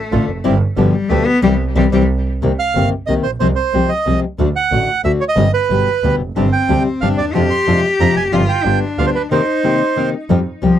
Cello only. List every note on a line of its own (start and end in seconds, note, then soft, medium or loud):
0.00 0.28 A3 medium
0.76 0.95 F3 medium
0.94 1.11 G3 medium
1.10 1.27 A3 medium
1.26 1.43 B3 loud
1.43 1.53 G3 loud
1.76 1.87 G3 medium
1.92 2.02 G3 medium
6.36 7.04 C4 medium
7.03 7.36 D4 medium
7.34 8.34 G4 loud
8.32 8.67 F4 medium
8.65 9.30 D4 medium
9.31 10.09 D#4 medium
10.63 10.79 F3 medium